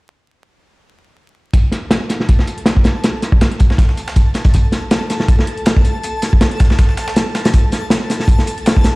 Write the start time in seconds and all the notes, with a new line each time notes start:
1.54 A4 A5, kick, closed hi-hat
1.72 snare, closed hi-hat
1.91 snare, closed hi-hat
2.09 snare, closed hi-hat
2.20 snare
2.29 kick, closed hi-hat
2.39 snare
2.47 closed hi-hat
2.58 closed hi-hat
2.66 snare, closed hi-hat
2.77 kick
2.84 snare, closed hi-hat
3.04 snare, closed hi-hat
3.22 snare, closed hi-hat
3.32 kick
3.41 snare, closed hi-hat
3.52 closed hi-hat
3.60 kick, closed hi-hat
3.70 snare
3.78 kick, snare, closed hi-hat
3.89 snare
3.97 closed hi-hat
4.08 snare
4.16 kick, closed hi-hat
4.34 snare, closed hi-hat
4.44 kick, snare, closed hi-hat
4.54 kick, closed hi-hat
4.72 snare, closed hi-hat
4.91 snare, closed hi-hat
5.10 snare, closed hi-hat
5.20 snare
5.28 kick, closed hi-hat
5.39 snare
5.47 closed hi-hat
5.57 closed hi-hat
5.66 snare, closed hi-hat
5.77 kick
5.85 closed hi-hat
6.03 closed hi-hat
6.22 snare, closed hi-hat
6.33 kick
6.41 snare, closed hi-hat
6.51 closed hi-hat
6.60 kick, snare, closed hi-hat
6.70 snare
6.79 kick, snare, closed hi-hat
6.89 snare
6.97 snare, closed hi-hat
7.08 snare
7.16 snare, closed hi-hat
7.35 snare, closed hi-hat
7.45 snare, closed hi-hat
7.53 kick, closed hi-hat
7.72 snare, closed hi-hat
7.90 snare, closed hi-hat
8.10 snare, closed hi-hat
8.20 snare
8.28 kick, closed hi-hat
8.39 snare
8.47 closed hi-hat
8.58 closed hi-hat
8.66 snare, closed hi-hat
8.77 kick
8.84 snare, closed hi-hat